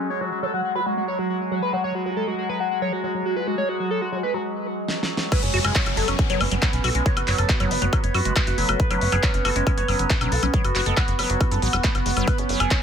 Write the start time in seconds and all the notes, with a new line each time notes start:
Already playing: F#3 G#3
0.10 F#4 C#5
0.21 F#3 F#4
0.32 C#4 F#4
0.43 F#3 A4
0.54 F#3 F#4
0.65 F#4
0.75 F#4 B4
0.86 G#3 F#4
0.97 G#3 F#4
1.08 C#5
1.19 F#3 F#4
1.30 F#4
1.41 F#4
1.51 F#3 F#4
1.62 C#4 B4
1.73 F#3 F#4
1.84 F#3 C#5
1.95 F#4
2.06 F#4
2.17 G#3 A4
2.28 G#3 F#4
2.38 F#4
2.49 F#3 B4
2.60 F#4
2.71 F#4
2.82 F#3 C#5
2.93 C#4 F#4
3.04 F#3 F#4
3.15 F#3
3.25 F#4
3.36 F#4 B4
3.47 G#3 F#4
3.58 G#3 C#5
3.69 F#4
3.80 F#3 F#4
3.91 A4
4.01 F#4
4.12 F#3 F#4
4.23 C#4 B4
4.34 F#3 F#4
4.88 snare
5.03 snare
5.17 snare
5.32 F#3 B3 B4, kick, closed hi-hat, crash, downlifter, high woodblock
5.43 F#1 C#4, closed hi-hat
5.54 F#1 C#4 F#4, open hi-hat
5.64 F#1 G#3 G#4, closed hi-hat, high woodblock
5.75 G#3 C#4, kick, clap, closed hi-hat
5.86 F#1 C#4, closed hi-hat, high woodblock
5.97 F#1 F#3 A4, open hi-hat
6.08 F#1 C#4, closed hi-hat, high woodblock
6.19 C#4 F#4, kick, closed hi-hat
6.30 F#1 F#3 B3 C#5, closed hi-hat
6.41 F#1 B3 C#4, open hi-hat, high woodblock
6.51 F#1 F#3 B3 C#4, closed hi-hat
6.62 F#3, kick, clap, closed hi-hat, high woodblock
6.73 B1 C#4, closed hi-hat
6.84 B1 F#4 A4, open hi-hat, high woodblock
6.95 B1 G#3 C#4, closed hi-hat
7.06 C#5, kick, closed hi-hat
7.17 F#1 F#4, closed hi-hat, high woodblock
7.28 F#1 F#3 F#4, clap, open hi-hat
7.38 F#1 A4, closed hi-hat, high woodblock
7.49 F#4, kick, clap, closed hi-hat
7.60 F#1 F#3 F#4, closed hi-hat, high woodblock
7.71 F#1 F#3 C#4 B4, open hi-hat
7.82 F#1 F#3 F#4, closed hi-hat
7.93 F#3 F#4, kick, closed hi-hat, high woodblock
8.04 F#1 C#5, closed hi-hat
8.14 F#2 F#4, open hi-hat, high woodblock
8.25 F#1 G#3 F#4, closed hi-hat
8.36 G#3, kick, clap, closed hi-hat, high woodblock
8.47 F#1 A3 F#4, closed hi-hat
8.58 F#1 F#3 B4, open hi-hat
8.69 F#1 F#4, closed hi-hat, high woodblock
8.80 F#4 B4, kick, closed hi-hat
8.91 F#1 F#3 C#4, closed hi-hat, high woodblock
9.01 F#1 C#4, open hi-hat
9.12 F#1 F#3 G#4, closed hi-hat, high woodblock
9.23 F#3 C#4, kick, clap, closed hi-hat
9.34 F#1 C#4, closed hi-hat
9.45 F#1 F#4 A4, open hi-hat, high woodblock
9.56 F#1 G#3 C#4, closed hi-hat
9.67 G#3 C#4, kick, closed hi-hat, high woodblock
9.78 F#1 B3 C#5, closed hi-hat
9.88 F#1 F#3 B3 C#4, open hi-hat, high woodblock
9.99 F#1 B3 C#4, closed hi-hat
10.10 F#4, kick, clap, closed hi-hat
10.21 B1 F#3 C#4, closed hi-hat, high woodblock
10.32 B1 C#4 A4, open hi-hat
10.43 B1 F#3 C#4, closed hi-hat, high woodblock
10.54 F#3 C#5, kick, closed hi-hat
10.65 F#1 F#4, closed hi-hat, high woodblock
10.75 F#1 F#4, clap, open hi-hat
10.86 F#1 G#3 B3 A4, closed hi-hat
10.97 B3 F#4, kick, clap, closed hi-hat, high woodblock
11.08 F#1 F#4, closed hi-hat
11.19 F#1 F#3 C#4 B4, open hi-hat, high woodblock
11.30 F#1 C#4 F#4, closed hi-hat
11.41 E4 F#4, kick, closed hi-hat, high woodblock
11.51 F#2 F#3 E4 A4, closed hi-hat
11.62 A1 F#3 F#4, open hi-hat
11.73 E1 F#3 F#4, closed hi-hat, high woodblock
11.84 A3, kick, clap, closed hi-hat
11.95 F#1 F#4, closed hi-hat, high woodblock
12.06 F#1 G#3 F#4, open hi-hat
12.17 F#1 F#3 F#4, closed hi-hat, high woodblock
12.27 G#3 B4 C#5, kick, closed hi-hat, high woodblock
12.38 F#1 C#4, closed hi-hat
12.49 F#1 F#3 C#4, open hi-hat
12.60 F#1 G#4, closed hi-hat, high woodblock
12.71 C#4 F#4, kick, clap, closed hi-hat